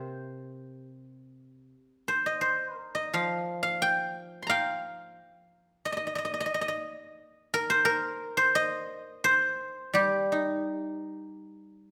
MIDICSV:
0, 0, Header, 1, 2, 480
1, 0, Start_track
1, 0, Tempo, 739827
1, 1128, Tempo, 708383
1, 1129, Time_signature, 4, 2, 24, 8
1, 2088, Tempo, 674916
1, 5928, Tempo, 701754
1, 7848, Tempo, 745342
1, 8201, End_track
2, 0, Start_track
2, 0, Title_t, "Guzheng"
2, 0, Program_c, 0, 107
2, 0, Note_on_c, 0, 48, 50
2, 0, Note_on_c, 0, 67, 65
2, 0, Note_on_c, 0, 70, 65
2, 0, Note_on_c, 0, 72, 58
2, 0, Note_on_c, 0, 75, 45
2, 0, Note_on_c, 0, 77, 39
2, 0, Note_on_c, 0, 79, 36
2, 0, Note_on_c, 0, 82, 33
2, 277, Note_off_c, 0, 82, 0
2, 399, Note_off_c, 0, 79, 0
2, 496, Note_off_c, 0, 77, 0
2, 561, Note_off_c, 0, 67, 0
2, 590, Note_off_c, 0, 75, 0
2, 846, Note_off_c, 0, 70, 0
2, 969, Note_off_c, 0, 72, 0
2, 1121, Note_off_c, 0, 48, 0
2, 1360, Note_on_c, 0, 72, 60
2, 1482, Note_on_c, 0, 75, 55
2, 1581, Note_off_c, 0, 72, 0
2, 1583, Note_on_c, 0, 72, 59
2, 1807, Note_off_c, 0, 72, 0
2, 1807, Note_on_c, 0, 70, 59
2, 1945, Note_off_c, 0, 75, 0
2, 1947, Note_on_c, 0, 75, 60
2, 2074, Note_on_c, 0, 53, 49
2, 2078, Note_on_c, 0, 77, 65
2, 2421, Note_off_c, 0, 77, 0
2, 2424, Note_on_c, 0, 77, 73
2, 2560, Note_on_c, 0, 79, 81
2, 2967, Note_off_c, 0, 70, 0
2, 2991, Note_on_c, 0, 84, 34
2, 3021, Note_on_c, 0, 82, 41
2, 3038, Note_off_c, 0, 77, 0
2, 3041, Note_on_c, 0, 77, 86
2, 3045, Note_off_c, 0, 79, 0
2, 3047, Note_on_c, 0, 79, 44
2, 3213, Note_off_c, 0, 75, 0
2, 3528, Note_off_c, 0, 53, 0
2, 3920, Note_off_c, 0, 84, 0
2, 4007, Note_on_c, 0, 75, 58
2, 4018, Note_off_c, 0, 82, 0
2, 4054, Note_off_c, 0, 75, 0
2, 4057, Note_on_c, 0, 75, 43
2, 4086, Note_off_c, 0, 75, 0
2, 4089, Note_on_c, 0, 75, 45
2, 4152, Note_off_c, 0, 79, 0
2, 4156, Note_off_c, 0, 75, 0
2, 4159, Note_on_c, 0, 75, 41
2, 4217, Note_off_c, 0, 75, 0
2, 4220, Note_on_c, 0, 75, 49
2, 4226, Note_off_c, 0, 77, 0
2, 4239, Note_off_c, 0, 75, 0
2, 4241, Note_on_c, 0, 75, 41
2, 4285, Note_off_c, 0, 75, 0
2, 4287, Note_on_c, 0, 75, 45
2, 4348, Note_off_c, 0, 75, 0
2, 4351, Note_on_c, 0, 75, 42
2, 4396, Note_off_c, 0, 75, 0
2, 4399, Note_on_c, 0, 75, 54
2, 4434, Note_off_c, 0, 75, 0
2, 4437, Note_on_c, 0, 75, 52
2, 4494, Note_off_c, 0, 75, 0
2, 4497, Note_on_c, 0, 75, 56
2, 4545, Note_off_c, 0, 75, 0
2, 4548, Note_on_c, 0, 75, 49
2, 4593, Note_off_c, 0, 75, 0
2, 4596, Note_on_c, 0, 75, 53
2, 5204, Note_on_c, 0, 70, 83
2, 5319, Note_on_c, 0, 72, 77
2, 5424, Note_off_c, 0, 70, 0
2, 5427, Note_on_c, 0, 70, 90
2, 5795, Note_off_c, 0, 72, 0
2, 5797, Note_on_c, 0, 72, 81
2, 5868, Note_off_c, 0, 75, 0
2, 5926, Note_on_c, 0, 75, 88
2, 6395, Note_off_c, 0, 72, 0
2, 6398, Note_on_c, 0, 72, 90
2, 6872, Note_on_c, 0, 55, 54
2, 6880, Note_on_c, 0, 67, 72
2, 6900, Note_off_c, 0, 70, 0
2, 7135, Note_on_c, 0, 63, 41
2, 7150, Note_off_c, 0, 75, 0
2, 7753, Note_off_c, 0, 72, 0
2, 8088, Note_off_c, 0, 63, 0
2, 8201, Note_off_c, 0, 55, 0
2, 8201, Note_off_c, 0, 67, 0
2, 8201, End_track
0, 0, End_of_file